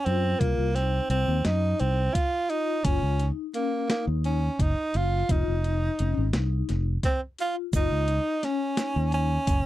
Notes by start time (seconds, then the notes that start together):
0.05 F#2 C4 F4, closed hi-hat
0.40 C2 A#3 F4, kick, closed hi-hat
0.58 C2
0.75 C4 D#4, snare, closed hi-hat
1.10 C2 C4, closed hi-hat
1.28 D#2
1.45 F#2 D#4, snare, closed hi-hat
1.80 C2 C4, closed hi-hat
2.14 F4, kick, closed hi-hat
2.50 D#4 F4, closed hi-hat
2.84 F#1 C#4 F4, kick, closed hi-hat
3.03 C#2
3.20 D#4, closed hi-hat
3.54 A#3 C#4, closed hi-hat
3.90 A#3 D#4, snare, closed hi-hat
4.07 D#2
4.24 C#4, closed hi-hat
4.59 F#1 D#4, kick, closed hi-hat
4.94 F#1 F4, closed hi-hat
5.29 F1 D#4 F4, kick, closed hi-hat
5.48 F1
5.64 D#4, closed hi-hat
5.99 F1 C#4, closed hi-hat
6.17 G#1
6.33 C2 D#4, snare, closed hi-hat
6.69 F1, snare, closed hi-hat
7.03 C4, kick, snare, closed hi-hat
7.38 F4, closed hi-hat
7.73 F#1 D#4 F4, kick, closed hi-hat, shaker
7.91 C#2
8.08 D#4, closed hi-hat
8.43 C#4, snare, closed hi-hat
8.77 snare, closed hi-hat, shaker
8.96 D#2
9.12 C#4, closed hi-hat
9.47 F#1, kick, closed hi-hat, shaker